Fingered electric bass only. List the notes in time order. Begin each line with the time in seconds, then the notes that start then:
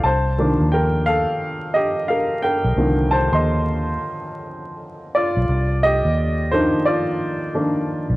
0.04 C2
0.60 D#2
2.64 B1
2.76 C2
3.33 D#2
5.37 B1
5.49 C2
6.05 D#2
8.10 B1